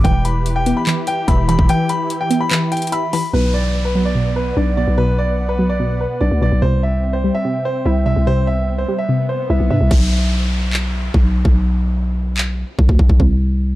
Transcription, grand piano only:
0.04 G5
0.25 B5
0.56 G5
0.77 B5
1.07 G5
1.28 B5
1.49 B5
1.70 G5
1.90 B5
2.21 G5
2.41 B5
2.72 G5
2.92 B5
3.13 B5
3.33 B4
3.54 D5
3.85 B4
4.05 D5
4.36 B4
4.57 D5
4.77 D5
4.98 B4
5.18 D5
5.49 B4
5.70 D5
6.01 B4
6.21 D5
6.42 D5
6.62 C5
6.83 E5
7.13 C5
7.35 E5
7.65 C5
7.86 E5
8.06 E5
8.27 C5
8.47 E5
8.78 C5
8.99 E5
9.29 C5
9.50 E5
9.71 E5

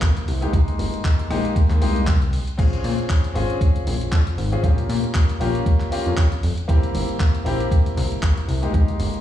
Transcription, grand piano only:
Already playing: A#3 C4 E4 G4
0.41 G#3 A#3 D#4 G4
0.52 G#3 A#3 D#4
1.30 G#3 A#3 D#4 G4
1.81 G#3 A#3 D#4 G4
2.57 C4 C#4 F4 G#4
3.34 C4 C#4 F4 G#4
4.52 C4 C#4 F4 G#4
4.63 A#3 C#4 F4 G4
5.40 A#3 C#4 F4 G4
5.91 A#3 C#4 F4 G4
6.68 A#3 C4 E4 G4
7.45 A#3 C4 E4 G4
8.62 G#3 A#3 D#4 G4
8.73 G#3 A#3 D#4 G4

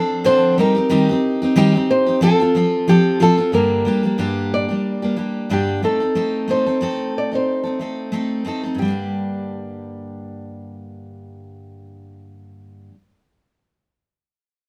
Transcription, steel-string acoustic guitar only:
Already playing: F3 C4 D4 A4
0.24 D3 F3 C4 D4 A4
0.58 G3 C4 D#4 G4
0.75 C4 D#4 G4
0.89 D#3 G3 C4 D#4 G4
1.09 C4 D#4 G4
1.42 C4 D#4 G4
1.56 D#3 G3 C4 D#4 G4
1.74 C4 D#4 G4
2.06 C4 D#4 G4
2.21 F3 C4 F4 A4
2.40 C4 F4 A4
2.55 F3 C4 F4 A4
2.88 F3 C4 F4 A4
3.20 F3 C4 F4 A4
3.38 C4 F4 A4
3.52 G2 D3 G3 A#3 D4 G4
3.85 G3 A#3 D4 G4
4.03 G3 A#3 D4 G4
4.18 G2 D3 G3 A#3 D4 G4
4.68 G3 A#3 D4 G4
5.02 G3 A#3 D4 G4
5.16 G3 A#3 D4 G4
5.50 G2 D3 G3 A#3 D4 G4
5.83 A3 C4 D#4 A4
6.00 C4 D#4 A4
6.15 A3 C4 D#4 A4
6.48 A3 C4 D#4 A4
6.66 C4 D#4 A4
6.81 A3 C4 D#4 A4
7.31 C4 D#4 A4
7.64 C4 D#4 A4
7.79 A3 C4 D#4 A4
8.12 A3 C4 D#4 A4
8.45 A3 C4 D#4 A4
8.63 C4 D#4 A4
8.75 G2 D3
8.82 G3 A#3
8.88 D4 G4

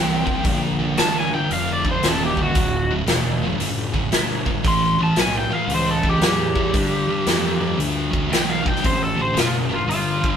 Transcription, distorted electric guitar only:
Already playing: G2 E3
0.25 G2 D3
0.44 G2 D3
0.80 G2 D3
0.97 G2 E3
1.33 G2 D3
1.51 G2 D3
1.85 G2 D3
2.04 G2 E3
2.38 G2 D3
2.55 D2 A2
2.91 D2 A2
3.06 D2 B2
3.42 D2 A2
3.60 D2 A2
3.93 D2 A2
4.12 D2 B2
4.46 D2 A2
4.64 A2 E3
4.99 A2 E3
5.18 A2 F#3
5.50 A2 E3
5.71 A2 E3
6.05 A2 E3
6.21 A2 F#3
6.55 A2 E3
6.74 G2 D3
7.09 G2 D3
7.27 G2 E3
7.60 G2 D3
7.78 G2 D3
8.11 G2 D3
8.30 G2 E3
8.64 G2 D3
8.82 D2 A2
9.16 D2 A2
9.34 D2 B2
9.69 D2 A2
9.87 G2 D3
10.22 G2 D3

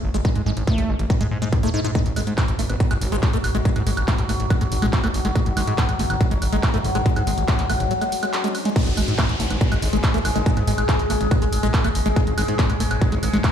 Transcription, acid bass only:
0.14 G#3
0.25 G#3
0.46 G#3
0.67 A3
0.89 G#3
1.10 F#3
1.21 G#3
1.42 G#3
1.63 A3
1.74 D#4
1.84 D#4
1.95 G#3
2.16 G#3
2.38 A3
2.59 A3
2.80 F#3
2.91 G#3
3.12 G#3
3.33 A3
3.55 G#3
3.65 G#3
3.87 G#3
4.08 A3
4.29 A3
4.50 F#3
4.61 G#3
4.82 G#3
5.04 A3
5.25 G#3
5.36 G#3
5.57 G#3
5.78 A3
5.99 A3
6.21 F#3
6.31 G#3
6.53 G#3
6.74 A3
6.95 G#3
7.06 G#3
7.27 G#3
7.48 A3
7.70 A3
7.91 F#3
8.02 G#3
8.23 G#3
8.44 G#3
8.65 G#3
8.76 G#3
8.97 G#3
9.19 A3
9.40 A3
9.61 F#3
9.72 G#3
9.93 G#3
10.14 A3
10.36 G#3
10.46 G#3
10.67 G#3
10.89 A3
11.10 A3
11.31 F#3
11.42 G#3
11.63 G#3
11.85 A3
12.06 G#3
12.16 G#3
12.38 G#3
12.59 A3
12.80 A3
13.02 F#3
13.12 G#3
13.33 G#3

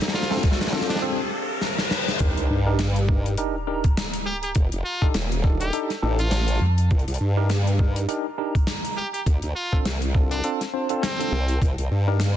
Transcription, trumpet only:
0.14 F4
0.89 D4
4.26 G4
4.43 G4
4.85 F4
5.60 G4
6.20 F4
8.97 G4
9.13 G4
9.56 F4
10.31 D4
11.03 C4

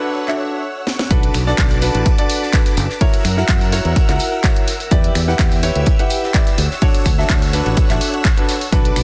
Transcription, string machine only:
Already playing: C#5 F#5 E6
1.11 B4 A5 D6
3.01 A#4 F#5 E6
4.92 G4 E5 E6
6.58 C#5 F#5
8.73 B4 A5 D6

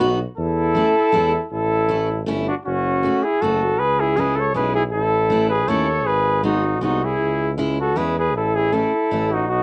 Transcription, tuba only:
0.00 B1
0.38 E2
1.14 E2
1.52 A1
2.28 G1
2.66 F#1
3.42 F#1
3.80 C#2
4.55 B1
4.92 A1
5.68 D#2
6.06 G#1
6.82 C2
7.21 C#2
7.98 E2
8.35 A1
9.11 A1
9.49 B1

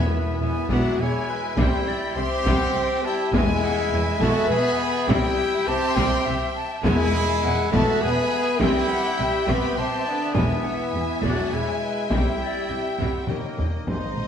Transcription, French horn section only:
Already playing: E4
0.72 F#4
1.00 G#4
1.57 G4
2.15 C5
3.02 G4
3.33 G#4
4.19 A4
4.48 B4
5.09 G4
5.67 C5
6.84 G#4
7.72 A4
8.01 B4
8.61 G4
9.49 B4
9.77 C5
10.07 D4
10.37 E4
11.25 F#4
11.53 G#4
12.12 G4
13.29 D#4
13.87 C4 G#4

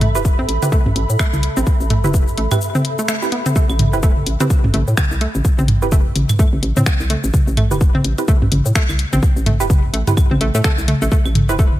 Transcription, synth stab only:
0.15 C4 E4 G4 B4
0.62 C4 E4 G4 B4
2.04 C4 E4 G4 B4
2.51 C4 E4 G4 B4
3.22 C4 E4 G4 B4
3.93 C4 E4 G4 B4
4.40 C4 E4 G4 B4
5.82 C4 E4 G4 B4
7.71 C4 E4 G4 B4
8.18 C4 E4 G4 B4
9.60 C4 E4 G4 B4
10.07 C4 E4 G4 B4
11.49 C4 E4 G4 B4

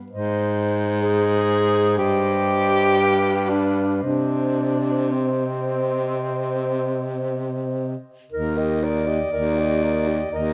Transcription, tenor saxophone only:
1.01 G#4
1.98 G4
3.49 D4
4.03 D4
5.12 C4
8.32 D#4
8.56 G4
8.82 D#4
9.07 G4
9.31 D#4
9.57 G4
9.82 D#4
10.07 G4
10.31 D#4

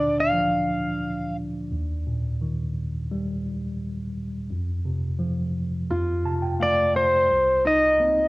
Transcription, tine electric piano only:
Already playing: D2 A#2 D3
0.33 F3
1.72 D#2
2.07 A#2
2.41 D#3
3.12 G3
4.50 F2
4.85 C3
5.19 F3
5.91 F2
6.25 C3 A5
6.42 G5
6.60 A3 F5
6.95 D5
7.30 C2
8.00 A#3 C4 D#4

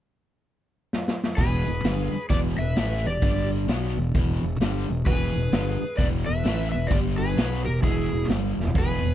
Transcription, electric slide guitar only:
1.37 B4
2.30 D5
2.59 E5
3.07 D5
5.07 B4
5.97 D5
6.26 E5
6.72 E5
6.87 D5
7.18 B4
7.65 A#4
7.84 G#4
8.78 B4

